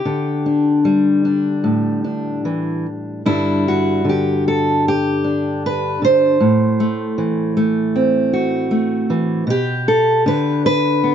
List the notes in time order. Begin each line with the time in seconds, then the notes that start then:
Already playing: G4
0.05 D3
0.46 D4
0.85 G3
1.25 D4
1.64 A2
2.04 D4
2.45 E3
3.26 G2 D3 G3 D4 E4
3.68 F#4
4.04 D3
4.09 G4
4.48 A4
4.88 G4
5.24 D4
5.66 B4
6.02 D3 C5
6.40 A2
6.80 A3
7.18 E3
7.57 A3
7.96 C4
8.33 F#4
8.71 A3
9.10 E3
9.47 B2 G4
9.88 A4
10.26 D3 B4
10.66 B4
11.04 B3